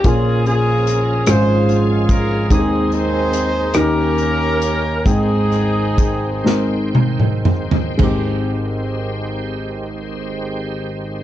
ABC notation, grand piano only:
X:1
M:6/8
L:1/8
Q:3/8=45
K:Ab
V:1 name="Grand piano"
[B,DFA]3 [A,DFA]3 | [A,CEGA]3 [B,DEG]3 | [A,CEg]3 [A,CEB]3 | [A,CEG]6 |]
V:2 name="Grand piano" clef=bass
[B,,,B,,]3 [A,,,A,,]3 | [E,,E,]3 [E,,E,]3 | [A,,,A,,]6 | A,,,6 |]